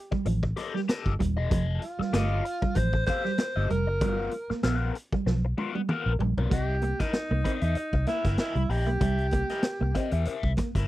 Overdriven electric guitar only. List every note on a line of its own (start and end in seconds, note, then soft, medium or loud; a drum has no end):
0.11 muted overdriven electric guitar stroke soft
0.26 muted overdriven electric guitar stroke soft
0.43 muted overdriven electric guitar stroke medium
0.56 0.79 G4 medium
0.56 0.75 A4 medium
0.56 0.73 D#5 medium
0.75 muted overdriven electric guitar stroke soft
0.88 1.11 G4 loud
0.88 1.12 A4 loud
0.88 1.12 D#5 medium
1.20 muted overdriven electric guitar stroke soft
1.37 1.49 G4 medium
1.37 1.50 A4 medium
1.37 1.51 D#5 medium
1.50 1.80 G4 medium
1.50 1.80 A4 medium
1.50 1.81 D#5 medium
1.99 muted overdriven electric guitar stroke medium
2.13 2.43 G4 medium
2.13 2.43 A4 loud
2.13 2.43 D#5 loud
2.44 muted overdriven electric guitar stroke soft
2.62 muted overdriven electric guitar stroke medium
2.76 muted overdriven electric guitar stroke soft
2.93 muted overdriven electric guitar stroke soft
3.07 3.30 G4 medium
3.07 3.25 A4 medium
3.07 3.24 F5 medium
3.25 muted overdriven electric guitar stroke soft
3.38 muted overdriven electric guitar stroke soft
3.56 3.69 G4 medium
3.56 3.69 A4 medium
3.56 3.70 D#5 loud
3.70 muted overdriven electric guitar stroke soft
3.87 muted overdriven electric guitar stroke medium
4.01 4.30 B3 medium
4.01 4.31 F4 medium
4.01 4.31 A#4 medium
4.50 muted overdriven electric guitar stroke soft
4.64 4.76 A#3 medium
4.64 4.77 E4 medium
4.64 4.77 A4 medium
4.76 4.93 B3 medium
4.76 4.93 F4 medium
4.76 4.93 A#4 medium
4.95 muted overdriven electric guitar stroke soft
5.13 muted overdriven electric guitar stroke medium
5.26 muted overdriven electric guitar stroke soft
5.45 muted overdriven electric guitar stroke soft
5.58 5.80 B3 loud
5.58 5.75 F4 loud
5.58 5.74 A#4 medium
5.75 muted overdriven electric guitar stroke soft
5.89 6.11 B3 medium
5.89 6.12 F4 medium
5.89 6.12 A#4 loud
6.21 muted overdriven electric guitar stroke soft
6.38 6.53 B3 medium
6.38 6.51 F4 medium
6.38 6.51 A#4 medium
6.51 6.74 E4 medium
6.51 6.74 A#4 loud
6.51 6.74 D#5 medium
6.83 muted overdriven electric guitar stroke soft
7.00 7.12 E4 medium
7.00 7.13 A#4 medium
7.00 7.14 D#5 medium
7.13 muted overdriven electric guitar stroke soft
7.31 muted overdriven electric guitar stroke soft
7.44 7.63 E4 medium
7.44 7.62 A#4 medium
7.44 7.62 D#5 medium
7.63 7.75 E4 medium
7.63 7.75 A#4 medium
7.63 7.77 E5 medium
7.76 muted overdriven electric guitar stroke soft
7.94 muted overdriven electric guitar stroke soft
8.07 8.26 E4 medium
8.07 8.25 A#4 medium
8.07 8.24 E5 medium
8.25 8.38 E4 soft
8.25 8.38 A#4 medium
8.25 8.40 E5 medium
8.39 8.61 E4 medium
8.39 8.56 A#4 medium
8.39 8.55 D#5 medium
8.56 muted overdriven electric guitar stroke medium
8.70 8.88 E4 medium
8.70 8.87 A#4 medium
8.70 8.86 D#5 medium
8.87 muted overdriven electric guitar stroke soft
9.01 9.23 E4 medium
9.01 9.24 A#4 medium
9.01 9.24 E5 medium
9.33 muted overdriven electric guitar stroke soft
9.50 9.63 E4 medium
9.50 9.63 A#4 medium
9.50 9.64 D#5 medium
9.64 muted overdriven electric guitar stroke soft
9.81 muted overdriven electric guitar stroke soft
9.95 10.13 E4 medium
9.95 10.12 A#4 medium
9.95 10.12 D#5 medium
10.13 10.25 E4 medium
10.13 10.26 A#4 soft
10.13 10.27 E5 medium
10.26 10.49 E4 medium
10.26 10.49 A#4 medium
10.26 10.50 E5 medium
10.58 muted overdriven electric guitar stroke soft
10.75 10.88 E4 medium
10.75 10.88 A#4 medium
10.75 10.88 E5 medium